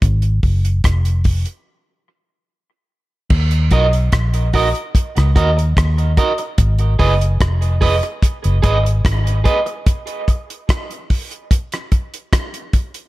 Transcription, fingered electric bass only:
\new Staff \with { instrumentName = "Fingered electric bass" } { \clef bass \time 4/4 \key ees \minor \tempo 4 = 73 aes,,8 ges,,8 f,,8. r2 r16 | ees,8 ces,8 bes,,8. r8 des,16 ees,8 ees,8 r8 | aes,,8 ges,,8 f,,8. r8 ges,,16 aes,,8 aes,,8 r8 | r1 | }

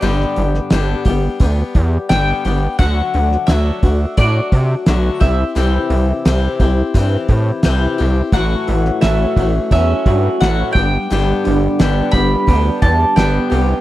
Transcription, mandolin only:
\new Staff \with { instrumentName = "Mandolin" } { \time 4/4 \key g \major \tempo 4 = 87 d''4. r4. g''4 | fis''4 e''4 d''4. e''8~ | e''4. r2 r8 | fis''4 e''4 e''4 fis''8 g''8~ |
g''4. b''4 a''8 g''4 | }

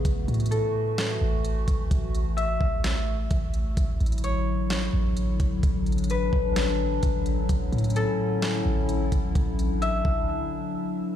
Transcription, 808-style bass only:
\new Staff \with { instrumentName = "808-style bass" } { \clef bass \time 4/4 \key e \mixolydian \tempo 4 = 129 a,,8 a,2 a,,4 a,,8 | a,,4. a,,4. a,,4 | a,,8 a,,2 a,,4 a,,8 | a,,4. a,,4. a,,4 |
a,,8 a,2 a,,4 a,,8 | a,,4. a,,8 r2 | }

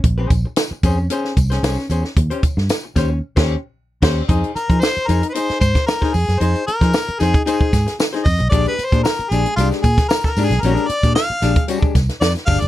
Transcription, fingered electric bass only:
\new Staff \with { instrumentName = "Fingered electric bass" } { \clef bass \time 4/4 \key f \dorian \tempo 4 = 113 bes,,8 bes,,16 r8. f,8 r8 c,8 c,16 r16 e,16 r16 | ees,16 r8 g,16 r8 ees,8 r16 ees,8 r8. ees,8 | f,16 r8 f16 r8 f,16 r8. aes,16 r8. f,16 ges,16 | f,16 r8 f16 r8 f,16 r8. aes,16 r8. f,16 b,,16 |
bes,,16 r8 bes,16 r8 bes,,16 r16 c,16 r16 bes,16 r8. aes,16 b,,16 | bes,,16 r8 bes,16 r8 bes,,16 r8. c,16 r16 f,16 r16 g,,16 ges,,16 | }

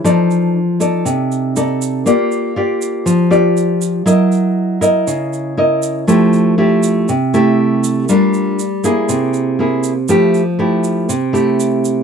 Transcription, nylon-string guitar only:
\new Staff \with { instrumentName = "Nylon-string guitar" } { \time 4/4 \key f \major \tempo 4 = 120 << { <ees' a' d''>4 r8 <ees' a' d''>4. <ees' a' d''>4 | <f' g' d''>4 <f' g' d''>4. <f' g' d''>4. | <e' bes' ees''>4. <e' bes' ees''>4. <e' bes' ees''>4 | <a e' g'>4 <a e' g'>4 r8 <a e' g'>4. |
<d' f' bes'>4 r8 <bes e' aes'>4. <bes e' gis'>8 r8 | <a e' g'>8 r8 <a e' g'>4 r8 <a e' g'>4. | } \\ { f2 c2 | bes2 f2 | ges2 des2 | f2 c2 |
g2 c2 | f2 c2 | } >> }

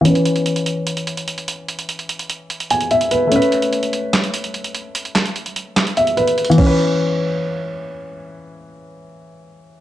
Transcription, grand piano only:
\new Staff \with { instrumentName = "Grand piano" } { \time 4/4 \key cis \minor \tempo 4 = 147 << { r1 | r2 r8 gis''8 e''8 b'8 | r1 | r2 r8 e''8 b'4 |
r1 | r1 | } \\ { <e cis' b'>1~ | <e cis' b'>1 | <a cis' b'>1~ | <a cis' b'>1 |
<e cis' b'>1~ | <e cis' b'>1 | } >> }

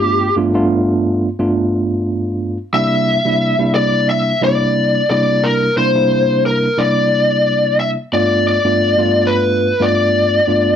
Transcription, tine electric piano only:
\new Staff \with { instrumentName = "Tine electric piano" } { \time 4/4 \key c \major \tempo 4 = 89 <g, a b d' f'>16 r16 <g, a b d' f'>16 <g, a b d' f'>4 r16 <g, a b d' f'>4.~ <g, a b d' f'>16 r16 | <c g bes d' e'>8. <c g bes d' e'>8 <c g bes d' e'>4 r16 <c g bes d' e'>8. r16 <c g bes d' e'>8~ | <c g bes d' e'>16 r16 <c g bes d' e'>16 <c g bes d' e'>4 r16 <c g bes d' e'>4.~ <c g bes d' e'>16 r16 | <g, a b d' f'>8. <g, a b d' f'>8 <g, a b d' f'>4 r16 <g, a b d' f'>8. r16 <g, a b d' f'>8 | }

